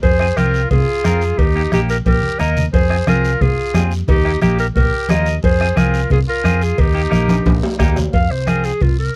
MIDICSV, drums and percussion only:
0, 0, Header, 1, 3, 480
1, 0, Start_track
1, 0, Key_signature, -4, "minor"
1, 0, Tempo, 337648
1, 50, Time_signature, 4, 2, 24, 8
1, 13018, End_track
2, 0, Start_track
2, 0, Title_t, "Two-headed folk drums"
2, 46, Note_on_c, 9, 36, 72
2, 188, Note_off_c, 9, 36, 0
2, 278, Note_on_c, 9, 37, 69
2, 420, Note_off_c, 9, 37, 0
2, 524, Note_on_c, 9, 37, 84
2, 666, Note_off_c, 9, 37, 0
2, 1007, Note_on_c, 9, 36, 82
2, 1149, Note_off_c, 9, 36, 0
2, 1483, Note_on_c, 9, 37, 84
2, 1625, Note_off_c, 9, 37, 0
2, 1966, Note_on_c, 9, 36, 73
2, 2108, Note_off_c, 9, 36, 0
2, 2443, Note_on_c, 9, 37, 84
2, 2585, Note_off_c, 9, 37, 0
2, 2930, Note_on_c, 9, 36, 74
2, 3072, Note_off_c, 9, 36, 0
2, 3410, Note_on_c, 9, 37, 74
2, 3552, Note_off_c, 9, 37, 0
2, 3887, Note_on_c, 9, 36, 73
2, 4029, Note_off_c, 9, 36, 0
2, 4126, Note_on_c, 9, 37, 70
2, 4268, Note_off_c, 9, 37, 0
2, 4367, Note_on_c, 9, 37, 86
2, 4510, Note_off_c, 9, 37, 0
2, 4850, Note_on_c, 9, 36, 89
2, 4992, Note_off_c, 9, 36, 0
2, 5325, Note_on_c, 9, 37, 82
2, 5467, Note_off_c, 9, 37, 0
2, 5805, Note_on_c, 9, 36, 83
2, 5947, Note_off_c, 9, 36, 0
2, 6044, Note_on_c, 9, 37, 68
2, 6186, Note_off_c, 9, 37, 0
2, 6282, Note_on_c, 9, 37, 81
2, 6424, Note_off_c, 9, 37, 0
2, 6767, Note_on_c, 9, 36, 82
2, 6909, Note_off_c, 9, 36, 0
2, 7248, Note_on_c, 9, 37, 77
2, 7391, Note_off_c, 9, 37, 0
2, 7729, Note_on_c, 9, 36, 71
2, 7871, Note_off_c, 9, 36, 0
2, 7972, Note_on_c, 9, 37, 68
2, 8115, Note_off_c, 9, 37, 0
2, 8207, Note_on_c, 9, 37, 85
2, 8349, Note_off_c, 9, 37, 0
2, 8687, Note_on_c, 9, 36, 87
2, 8829, Note_off_c, 9, 36, 0
2, 9167, Note_on_c, 9, 37, 82
2, 9309, Note_off_c, 9, 37, 0
2, 9645, Note_on_c, 9, 36, 73
2, 9787, Note_off_c, 9, 36, 0
2, 10119, Note_on_c, 9, 37, 86
2, 10261, Note_off_c, 9, 37, 0
2, 10604, Note_on_c, 9, 36, 85
2, 10746, Note_off_c, 9, 36, 0
2, 11080, Note_on_c, 9, 37, 84
2, 11083, Note_on_c, 9, 36, 73
2, 11222, Note_off_c, 9, 37, 0
2, 11226, Note_off_c, 9, 36, 0
2, 11565, Note_on_c, 9, 36, 73
2, 11707, Note_off_c, 9, 36, 0
2, 11815, Note_on_c, 9, 37, 67
2, 11958, Note_off_c, 9, 37, 0
2, 12048, Note_on_c, 9, 37, 79
2, 12190, Note_off_c, 9, 37, 0
2, 12529, Note_on_c, 9, 36, 84
2, 12672, Note_off_c, 9, 36, 0
2, 13018, End_track
3, 0, Start_track
3, 0, Title_t, "Drums"
3, 40, Note_on_c, 9, 74, 69
3, 42, Note_on_c, 9, 56, 101
3, 50, Note_on_c, 9, 63, 30
3, 182, Note_off_c, 9, 74, 0
3, 184, Note_off_c, 9, 56, 0
3, 192, Note_off_c, 9, 63, 0
3, 524, Note_on_c, 9, 63, 78
3, 531, Note_on_c, 9, 73, 63
3, 666, Note_off_c, 9, 63, 0
3, 673, Note_off_c, 9, 73, 0
3, 770, Note_on_c, 9, 73, 58
3, 912, Note_off_c, 9, 73, 0
3, 1007, Note_on_c, 9, 74, 71
3, 1008, Note_on_c, 9, 56, 87
3, 1019, Note_on_c, 9, 63, 36
3, 1019, Note_on_c, 9, 64, 79
3, 1149, Note_off_c, 9, 74, 0
3, 1150, Note_off_c, 9, 56, 0
3, 1161, Note_off_c, 9, 63, 0
3, 1161, Note_off_c, 9, 64, 0
3, 1484, Note_on_c, 9, 73, 79
3, 1490, Note_on_c, 9, 63, 83
3, 1627, Note_off_c, 9, 73, 0
3, 1632, Note_off_c, 9, 63, 0
3, 1726, Note_on_c, 9, 73, 62
3, 1868, Note_off_c, 9, 73, 0
3, 1970, Note_on_c, 9, 74, 67
3, 1974, Note_on_c, 9, 56, 97
3, 2112, Note_off_c, 9, 74, 0
3, 2116, Note_off_c, 9, 56, 0
3, 2445, Note_on_c, 9, 63, 84
3, 2449, Note_on_c, 9, 73, 70
3, 2587, Note_off_c, 9, 63, 0
3, 2591, Note_off_c, 9, 73, 0
3, 2690, Note_on_c, 9, 73, 65
3, 2832, Note_off_c, 9, 73, 0
3, 2926, Note_on_c, 9, 74, 73
3, 2929, Note_on_c, 9, 63, 72
3, 2934, Note_on_c, 9, 56, 92
3, 3068, Note_off_c, 9, 74, 0
3, 3071, Note_off_c, 9, 63, 0
3, 3077, Note_off_c, 9, 56, 0
3, 3160, Note_on_c, 9, 64, 68
3, 3303, Note_off_c, 9, 64, 0
3, 3404, Note_on_c, 9, 64, 74
3, 3410, Note_on_c, 9, 73, 72
3, 3546, Note_off_c, 9, 64, 0
3, 3552, Note_off_c, 9, 73, 0
3, 3650, Note_on_c, 9, 64, 96
3, 3651, Note_on_c, 9, 73, 72
3, 3793, Note_off_c, 9, 64, 0
3, 3793, Note_off_c, 9, 73, 0
3, 3892, Note_on_c, 9, 56, 99
3, 3894, Note_on_c, 9, 74, 70
3, 4034, Note_off_c, 9, 56, 0
3, 4036, Note_off_c, 9, 74, 0
3, 4366, Note_on_c, 9, 63, 89
3, 4369, Note_on_c, 9, 73, 66
3, 4509, Note_off_c, 9, 63, 0
3, 4511, Note_off_c, 9, 73, 0
3, 4613, Note_on_c, 9, 73, 67
3, 4756, Note_off_c, 9, 73, 0
3, 4852, Note_on_c, 9, 74, 68
3, 4858, Note_on_c, 9, 56, 83
3, 4858, Note_on_c, 9, 63, 36
3, 4858, Note_on_c, 9, 64, 87
3, 4995, Note_off_c, 9, 74, 0
3, 5000, Note_off_c, 9, 63, 0
3, 5000, Note_off_c, 9, 64, 0
3, 5001, Note_off_c, 9, 56, 0
3, 5322, Note_on_c, 9, 63, 81
3, 5324, Note_on_c, 9, 73, 79
3, 5329, Note_on_c, 9, 66, 69
3, 5464, Note_off_c, 9, 63, 0
3, 5466, Note_off_c, 9, 73, 0
3, 5471, Note_off_c, 9, 66, 0
3, 5559, Note_on_c, 9, 73, 65
3, 5701, Note_off_c, 9, 73, 0
3, 5797, Note_on_c, 9, 74, 75
3, 5798, Note_on_c, 9, 63, 35
3, 5798, Note_on_c, 9, 64, 66
3, 5809, Note_on_c, 9, 56, 103
3, 5940, Note_off_c, 9, 63, 0
3, 5940, Note_off_c, 9, 64, 0
3, 5940, Note_off_c, 9, 74, 0
3, 5951, Note_off_c, 9, 56, 0
3, 6277, Note_on_c, 9, 73, 64
3, 6279, Note_on_c, 9, 63, 90
3, 6419, Note_off_c, 9, 73, 0
3, 6421, Note_off_c, 9, 63, 0
3, 6520, Note_on_c, 9, 73, 65
3, 6662, Note_off_c, 9, 73, 0
3, 6761, Note_on_c, 9, 63, 38
3, 6761, Note_on_c, 9, 64, 88
3, 6762, Note_on_c, 9, 74, 70
3, 6777, Note_on_c, 9, 56, 87
3, 6903, Note_off_c, 9, 63, 0
3, 6903, Note_off_c, 9, 64, 0
3, 6904, Note_off_c, 9, 74, 0
3, 6919, Note_off_c, 9, 56, 0
3, 7230, Note_on_c, 9, 63, 77
3, 7233, Note_on_c, 9, 73, 79
3, 7252, Note_on_c, 9, 66, 74
3, 7372, Note_off_c, 9, 63, 0
3, 7376, Note_off_c, 9, 73, 0
3, 7395, Note_off_c, 9, 66, 0
3, 7474, Note_on_c, 9, 73, 64
3, 7616, Note_off_c, 9, 73, 0
3, 7714, Note_on_c, 9, 74, 77
3, 7729, Note_on_c, 9, 63, 33
3, 7733, Note_on_c, 9, 56, 102
3, 7856, Note_off_c, 9, 74, 0
3, 7871, Note_off_c, 9, 63, 0
3, 7875, Note_off_c, 9, 56, 0
3, 8200, Note_on_c, 9, 63, 88
3, 8201, Note_on_c, 9, 73, 72
3, 8342, Note_off_c, 9, 63, 0
3, 8343, Note_off_c, 9, 73, 0
3, 8443, Note_on_c, 9, 73, 60
3, 8585, Note_off_c, 9, 73, 0
3, 8675, Note_on_c, 9, 63, 37
3, 8675, Note_on_c, 9, 64, 93
3, 8688, Note_on_c, 9, 56, 83
3, 8688, Note_on_c, 9, 74, 67
3, 8817, Note_off_c, 9, 63, 0
3, 8817, Note_off_c, 9, 64, 0
3, 8830, Note_off_c, 9, 56, 0
3, 8830, Note_off_c, 9, 74, 0
3, 9157, Note_on_c, 9, 63, 76
3, 9172, Note_on_c, 9, 73, 68
3, 9299, Note_off_c, 9, 63, 0
3, 9315, Note_off_c, 9, 73, 0
3, 9406, Note_on_c, 9, 73, 69
3, 9548, Note_off_c, 9, 73, 0
3, 9637, Note_on_c, 9, 63, 35
3, 9637, Note_on_c, 9, 64, 66
3, 9641, Note_on_c, 9, 56, 101
3, 9652, Note_on_c, 9, 74, 76
3, 9780, Note_off_c, 9, 63, 0
3, 9780, Note_off_c, 9, 64, 0
3, 9783, Note_off_c, 9, 56, 0
3, 9794, Note_off_c, 9, 74, 0
3, 10118, Note_on_c, 9, 63, 90
3, 10130, Note_on_c, 9, 73, 64
3, 10260, Note_off_c, 9, 63, 0
3, 10272, Note_off_c, 9, 73, 0
3, 10353, Note_on_c, 9, 63, 87
3, 10367, Note_on_c, 9, 73, 70
3, 10368, Note_on_c, 9, 65, 73
3, 10495, Note_off_c, 9, 63, 0
3, 10509, Note_off_c, 9, 73, 0
3, 10510, Note_off_c, 9, 65, 0
3, 10600, Note_on_c, 9, 63, 80
3, 10603, Note_on_c, 9, 74, 66
3, 10612, Note_on_c, 9, 56, 88
3, 10612, Note_on_c, 9, 65, 95
3, 10742, Note_off_c, 9, 63, 0
3, 10745, Note_off_c, 9, 74, 0
3, 10754, Note_off_c, 9, 56, 0
3, 10754, Note_off_c, 9, 65, 0
3, 10852, Note_on_c, 9, 66, 87
3, 10994, Note_off_c, 9, 66, 0
3, 11085, Note_on_c, 9, 66, 82
3, 11086, Note_on_c, 9, 73, 76
3, 11227, Note_off_c, 9, 66, 0
3, 11228, Note_off_c, 9, 73, 0
3, 11319, Note_on_c, 9, 64, 72
3, 11320, Note_on_c, 9, 66, 84
3, 11325, Note_on_c, 9, 73, 69
3, 11461, Note_off_c, 9, 64, 0
3, 11462, Note_off_c, 9, 66, 0
3, 11467, Note_off_c, 9, 73, 0
3, 11561, Note_on_c, 9, 63, 31
3, 11561, Note_on_c, 9, 74, 65
3, 11567, Note_on_c, 9, 56, 98
3, 11703, Note_off_c, 9, 63, 0
3, 11703, Note_off_c, 9, 74, 0
3, 11709, Note_off_c, 9, 56, 0
3, 12042, Note_on_c, 9, 63, 81
3, 12042, Note_on_c, 9, 73, 63
3, 12184, Note_off_c, 9, 63, 0
3, 12184, Note_off_c, 9, 73, 0
3, 12280, Note_on_c, 9, 73, 62
3, 12423, Note_off_c, 9, 73, 0
3, 12517, Note_on_c, 9, 74, 64
3, 12529, Note_on_c, 9, 63, 33
3, 12529, Note_on_c, 9, 64, 79
3, 12530, Note_on_c, 9, 56, 81
3, 12659, Note_off_c, 9, 74, 0
3, 12671, Note_off_c, 9, 63, 0
3, 12671, Note_off_c, 9, 64, 0
3, 12672, Note_off_c, 9, 56, 0
3, 13018, End_track
0, 0, End_of_file